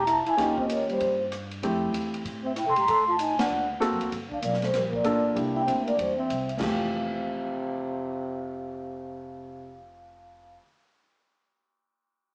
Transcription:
0.00 0.23 E1 medium
0.06 0.25 E4 medium
0.06 cross-stick medium
0.06 hi-hat pedal medium
0.06 ride medium
0.11 0.28 A5 medium
0.26 0.37 E4 medium
0.26 0.39 G#5 medium
0.26 muted upright bass stroke soft
0.26 ride soft
0.37 0.97 D#2 medium
0.37 1.24 A#3 medium
0.37 1.24 C#4 medium
0.37 0.56 D#4 medium
0.37 1.24 F4 medium
0.37 1.24 G4 medium
0.37 0.58 G5 medium
0.37 kick soft
0.37 snare soft
0.37 ride medium
0.58 0.68 C4 medium
0.58 0.71 D#5 medium
0.58 kick soft
0.69 0.87 A#3 medium
0.69 hi-hat pedal medium
0.69 ride medium
0.73 0.90 C#5 medium
0.89 1.18 G3 medium
0.89 1.19 C5 medium
0.89 ride soft
1.00 1.60 G2 medium
1.00 kick soft
1.00 ride medium
1.32 cross-stick medium
1.32 hi-hat pedal soft
1.32 ride medium
1.51 ride soft
1.63 1.92 F2 medium
1.63 2.49 A3 medium
1.63 2.49 C4 medium
1.63 2.49 E4 medium
1.63 2.49 G4 medium
1.63 kick soft
1.63 ride medium
1.92 2.22 E2 medium
1.92 hi-hat pedal medium
1.92 ride medium
2.14 ride soft
2.25 2.63 A2 medium
2.25 kick soft
2.25 ride medium
2.44 2.55 C4 medium
2.44 2.57 E5 medium
2.56 2.65 E4 medium
2.56 2.67 G5 medium
2.56 cross-stick medium
2.56 hi-hat pedal soft
2.56 ride medium
2.67 2.76 C3 medium
2.67 2.76 A4 medium
2.67 2.78 C6 medium
2.76 2.87 G#2 medium
2.76 2.86 G4 medium
2.76 2.88 A#5 medium
2.76 ride soft
2.88 3.34 A2 medium
2.88 3.05 A4 medium
2.88 kick soft
2.88 ride medium
2.92 3.08 C6 loud
3.08 3.18 F4 medium
3.08 3.20 A5 medium
3.19 3.36 D#4 medium
3.19 3.38 G#5 medium
3.19 hi-hat pedal medium
3.19 ride medium
3.38 3.66 D4 medium
3.38 3.67 F#5 medium
3.38 muted upright bass stroke soft
3.38 snare medium
3.38 ride medium
3.50 3.88 D2 medium
3.80 4.11 A#3 medium
3.80 4.11 C4 medium
3.80 4.11 F#4 medium
3.80 4.11 A4 medium
3.80 cross-stick medium
3.80 hi-hat pedal soft
3.80 ride medium
3.91 4.00 F#2 medium
4.01 4.11 D2 medium
4.01 ride soft
4.12 4.42 G1 medium
4.12 kick soft
4.12 ride medium
4.30 4.41 D4 medium
4.30 4.43 F5 medium
4.30 kick soft
4.42 4.73 B1 medium
4.42 4.60 A#3 medium
4.42 4.62 D5 medium
4.42 kick soft
4.42 hi-hat pedal medium
4.42 ride medium
4.54 snare soft
4.61 4.72 A3 medium
4.61 4.74 C5 medium
4.61 snare soft
4.61 ride soft
4.73 5.04 A#1 medium
4.73 4.89 G3 medium
4.73 4.93 A#4 medium
4.73 kick soft
4.73 snare soft
4.73 ride medium
4.90 5.31 A#3 medium
4.90 kick soft
4.95 5.34 D5 medium
5.04 5.35 A1 medium
5.04 5.34 A#3 medium
5.04 5.34 D4 medium
5.04 5.36 F4 medium
5.04 5.36 A4 medium
5.04 kick soft
5.04 hi-hat pedal medium
5.04 ride medium
5.35 5.66 C2 medium
5.35 6.22 A#3 soft
5.35 6.22 D4 soft
5.35 6.22 E4 soft
5.35 6.22 G4 medium
5.35 kick soft
5.35 ride medium
5.54 5.65 E4 medium
5.54 5.67 G5 medium
5.66 5.97 D2 medium
5.66 5.84 C4 medium
5.66 5.87 E5 medium
5.66 kick soft
5.66 hi-hat pedal medium
5.66 ride medium
5.86 5.97 A#3 medium
5.86 5.99 D5 medium
5.86 ride soft
5.98 6.29 E2 medium
5.98 6.16 G3 medium
5.98 6.18 C5 medium
5.98 kick soft
5.98 ride medium
6.16 6.51 C4 medium
6.16 6.52 E5 medium
6.30 6.60 C2 medium
6.30 kick soft
6.30 hi-hat pedal soft
6.30 ride medium
6.49 ride soft
6.59 10.56 F1 medium
6.59 10.59 F2 medium
6.59 9.85 C3 medium
6.59 10.60 E3 medium
6.59 10.59 F3 medium
6.59 10.60 A3 medium
6.59 10.60 G4 medium
6.59 10.56 F5 medium
6.59 kick medium
6.59 snare medium
6.59 crash medium

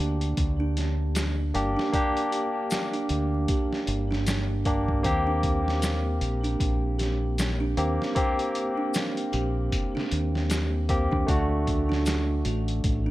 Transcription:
0.00 0.34 D2 medium
0.00 1.50 A#3 medium
0.00 1.50 D4 medium
0.00 0.58 G4 medium
0.00 1.51 G4 medium
0.21 closed hi-hat soft
0.37 1.51 D2 medium
0.37 kick medium
0.37 closed hi-hat medium
0.60 0.75 D4 medium
0.77 snare soft
0.77 closed hi-hat medium
1.15 1.75 G4 medium
1.15 snare loud
1.15 closed hi-hat medium
1.15 maracas medium
1.54 1.75 G1 medium
1.54 1.89 A#3 medium
1.54 1.90 D4 medium
1.54 1.90 G4 medium
1.54 closed hi-hat medium
1.76 1.92 D4 medium
1.76 snare soft
1.93 4.62 A#3 medium
1.93 4.62 D4 medium
1.93 4.63 G4 loud
1.93 kick loud
1.93 closed hi-hat medium
2.17 closed hi-hat soft
2.32 2.92 G4 medium
2.32 closed hi-hat medium
2.71 snare loud
2.71 closed hi-hat medium
2.71 maracas medium
2.93 3.09 D4 medium
2.93 closed hi-hat soft
3.09 3.45 D2 medium
3.09 closed hi-hat medium
3.48 4.08 G4 medium
3.48 kick loud
3.48 closed hi-hat medium
3.73 snare soft
3.87 5.02 G1 medium
3.87 closed hi-hat medium
4.11 4.26 D4 medium
4.11 snare soft
4.26 snare loud
4.26 closed hi-hat medium
4.26 maracas medium
4.65 5.01 A#3 medium
4.65 5.01 D4 medium
4.65 5.05 G4 medium
4.65 5.01 G4 medium
4.65 kick medium
4.65 closed hi-hat medium
4.88 kick medium
5.03 6.18 D#2 medium
5.03 7.73 A#3 medium
5.03 7.73 C4 medium
5.03 7.74 G4 loud
5.03 kick loud
5.03 closed hi-hat medium
5.27 5.43 D4 medium
5.43 kick medium
5.43 closed hi-hat medium
5.68 snare soft
5.82 6.42 G4 medium
5.82 snare loud
5.82 closed hi-hat medium
5.82 maracas medium
6.21 6.57 A#1 medium
6.21 closed hi-hat medium
6.44 6.59 D4 medium
6.44 closed hi-hat soft
6.60 7.74 A#1 medium
6.60 kick loud
6.60 closed hi-hat medium
6.99 7.59 G4 medium
6.99 snare soft
6.99 closed hi-hat medium
7.38 snare loud
7.38 closed hi-hat medium
7.38 maracas medium
7.60 7.76 D4 loud
7.77 7.98 D#2 medium
7.77 8.12 A#3 medium
7.77 8.13 C4 medium
7.77 8.13 G4 medium
7.77 closed hi-hat medium
8.02 snare soft
8.15 10.85 A#3 medium
8.15 10.85 C4 medium
8.15 8.76 G4 medium
8.15 10.86 G4 medium
8.15 kick loud
8.15 closed hi-hat medium
8.39 closed hi-hat soft
8.55 closed hi-hat medium
8.77 8.93 D4 medium
8.94 snare loud
8.94 closed hi-hat medium
8.94 maracas medium
9.17 closed hi-hat soft
9.33 9.69 A#1 medium
9.33 9.93 G4 medium
9.33 closed hi-hat medium
9.72 kick loud
9.72 closed hi-hat medium
9.95 10.10 D4 medium
9.95 snare soft
10.12 11.12 D#2 medium
10.12 closed hi-hat medium
10.35 snare soft
10.50 11.10 G4 medium
10.50 snare loud
10.50 closed hi-hat medium
10.50 maracas medium
10.89 11.24 A#3 medium
10.89 11.25 C4 medium
10.89 11.25 G4 medium
10.89 kick medium
10.89 closed hi-hat medium
11.12 11.26 D#2 medium
11.12 11.27 D4 medium
11.12 kick medium
11.26 12.42 D2 medium
11.26 13.11 A3 medium
11.26 13.11 D4 medium
11.26 11.88 F#4 medium
11.26 13.11 F#4 medium
11.26 kick loud
11.26 closed hi-hat medium
11.67 kick medium
11.67 closed hi-hat medium
11.89 12.05 D4 medium
11.89 snare soft
12.06 snare loud
12.06 closed hi-hat medium
12.06 maracas medium
12.45 12.80 A1 medium
12.45 13.05 F#4 medium
12.45 closed hi-hat medium
12.68 closed hi-hat soft
12.84 13.11 A1 medium
12.84 kick medium
12.84 closed hi-hat medium
13.06 13.11 D4 medium

